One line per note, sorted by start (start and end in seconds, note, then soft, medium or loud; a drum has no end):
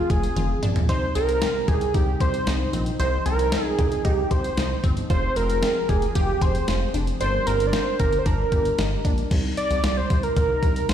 0.00 0.85 F3 medium
0.00 0.85 C4 medium
0.00 0.12 F4 medium
0.00 0.85 G#4 medium
0.10 0.28 F1 loud
0.10 0.63 G#4 medium
0.10 0.31 G#4 medium
0.10 kick medium
0.10 closed hi-hat medium
0.23 closed hi-hat medium
0.36 0.55 F1 loud
0.36 0.57 F4 medium
0.36 closed hi-hat medium
0.36 high tom medium
0.63 0.91 A#1 medium
0.63 0.83 D4 medium
0.63 closed hi-hat medium
0.63 mid tom medium
0.76 closed hi-hat soft
0.76 floor tom medium
0.89 1.07 C2 loud
0.89 5.06 C3 medium
0.89 2.97 G3 medium
0.89 5.06 D#4 medium
0.89 1.10 D#4 medium
0.89 1.14 C5 loud
0.89 kick medium
0.89 closed hi-hat medium
1.15 1.43 C2 medium
1.15 1.36 C4 medium
1.15 1.69 A#4 loud
1.15 closed hi-hat medium
1.29 closed hi-hat medium
1.42 1.62 C4 medium
1.42 snare loud
1.42 closed hi-hat medium
1.68 1.86 C2 loud
1.68 1.89 G4 medium
1.68 1.96 G#4 medium
1.68 kick medium
1.68 closed hi-hat medium
1.81 closed hi-hat soft
1.94 2.13 C2 loud
1.94 2.15 D#4 medium
1.94 2.20 G4 medium
1.94 kick medium
1.94 closed hi-hat medium
2.20 2.39 C2 loud
2.20 2.41 G4 medium
2.20 2.70 C5 loud
2.20 kick medium
2.20 closed hi-hat medium
2.34 closed hi-hat medium
2.47 2.65 C2 loud
2.47 2.68 D#4 medium
2.47 snare loud
2.47 closed hi-hat medium
2.73 2.92 A#1 medium
2.73 2.94 C4 medium
2.73 closed hi-hat medium
2.86 closed hi-hat soft
3.00 3.18 C2 loud
3.00 7.17 F3 medium
3.00 3.20 D#4 medium
3.00 3.24 C5 loud
3.00 closed hi-hat medium
3.26 3.54 C2 medium
3.26 3.46 C4 medium
3.26 3.65 A#4 loud
3.26 closed hi-hat medium
3.39 closed hi-hat medium
3.52 3.73 C4 medium
3.52 snare loud
3.52 closed hi-hat medium
3.65 3.78 G#4 loud
3.78 3.97 C2 loud
3.78 3.99 G4 medium
3.78 4.06 G#4 medium
3.78 kick medium
3.78 closed hi-hat medium
3.92 closed hi-hat soft
4.04 4.23 C2 loud
4.04 4.25 D#4 medium
4.04 4.32 G4 medium
4.04 kick medium
4.04 closed hi-hat medium
4.31 4.49 C2 loud
4.31 4.52 G4 medium
4.31 4.84 C5 loud
4.31 kick medium
4.31 closed hi-hat medium
4.44 closed hi-hat medium
4.57 4.76 C2 loud
4.57 4.78 D#4 medium
4.57 snare loud
4.57 closed hi-hat medium
4.84 5.02 G1 medium
4.84 5.04 C4 medium
4.84 kick medium
4.84 closed hi-hat medium
4.97 closed hi-hat soft
5.10 5.28 F1 loud
5.10 7.18 C4 medium
5.10 5.31 F4 medium
5.10 7.18 G#4 medium
5.10 5.38 C5 loud
5.10 kick loud
5.10 closed hi-hat medium
5.36 5.64 F1 loud
5.36 5.57 C4 medium
5.36 5.90 A#4 loud
5.36 closed hi-hat medium
5.50 closed hi-hat medium
5.63 5.83 C4 medium
5.63 snare loud
5.63 closed hi-hat medium
5.89 6.08 F1 loud
5.89 6.10 G4 medium
5.89 6.15 G#4 medium
5.89 kick medium
5.89 closed hi-hat medium
6.02 closed hi-hat soft
6.15 6.34 F1 loud
6.15 6.36 F4 medium
6.15 6.43 G4 medium
6.15 kick medium
6.15 closed hi-hat medium
6.41 6.60 F1 medium
6.41 6.62 G#4 medium
6.41 6.94 C5 loud
6.41 kick medium
6.41 closed hi-hat medium
6.55 closed hi-hat medium
6.68 6.86 F1 loud
6.68 6.89 F4 medium
6.68 snare loud
6.68 closed hi-hat medium
6.94 7.13 F1 medium
6.94 7.15 D4 medium
6.94 closed hi-hat medium
7.07 closed hi-hat soft
7.21 7.39 G1 loud
7.21 9.29 G3 medium
7.21 7.41 D4 medium
7.21 9.29 D4 medium
7.21 9.29 A#4 medium
7.21 7.48 C5 loud
7.21 closed hi-hat medium
7.47 7.75 G1 medium
7.47 7.68 C4 medium
7.47 7.68 A#4 loud
7.47 closed hi-hat medium
7.60 closed hi-hat medium
7.67 7.75 D5 medium
7.73 7.94 C4 medium
7.73 7.99 C5 loud
7.73 snare loud
7.73 closed hi-hat medium
7.99 8.18 G1 loud
7.99 8.20 G4 medium
7.99 8.18 A#4 medium
7.99 kick loud
7.99 closed hi-hat medium
8.13 closed hi-hat medium
8.19 8.28 C5 medium
8.26 8.44 G1 loud
8.26 8.46 D4 medium
8.26 9.05 A#4 medium
8.26 kick medium
8.26 closed hi-hat medium
8.52 8.71 G1 loud
8.52 8.73 G4 medium
8.52 kick medium
8.52 closed hi-hat medium
8.65 closed hi-hat medium
8.78 8.97 G1 loud
8.78 8.99 D#4 medium
8.78 snare loud
8.78 closed hi-hat medium
9.05 9.23 A#1 medium
9.05 9.25 D4 medium
9.05 kick medium
9.05 closed hi-hat medium
9.18 closed hi-hat soft
9.31 9.50 C2 loud
9.31 10.94 C3 medium
9.31 10.94 G3 medium
9.31 10.94 D#4 medium
9.31 kick loud
9.31 closed hi-hat medium
9.31 crash medium
9.57 9.99 D5 loud
9.57 closed hi-hat medium
9.71 9.80 C2 medium
9.71 closed hi-hat medium
9.84 10.02 C2 loud
9.84 snare loud
9.84 closed hi-hat medium
9.97 10.25 C5 loud
10.10 10.29 C2 medium
10.10 kick medium
10.10 closed hi-hat medium
10.23 10.36 A#4 medium
10.23 closed hi-hat medium
10.36 10.55 C2 loud
10.36 10.91 A#4 loud
10.36 kick loud
10.36 closed hi-hat medium
10.63 10.81 C2 loud
10.63 kick medium
10.63 closed hi-hat medium
10.76 closed hi-hat medium
10.89 10.94 C2 loud
10.89 10.94 C5 medium
10.89 snare loud
10.89 closed hi-hat medium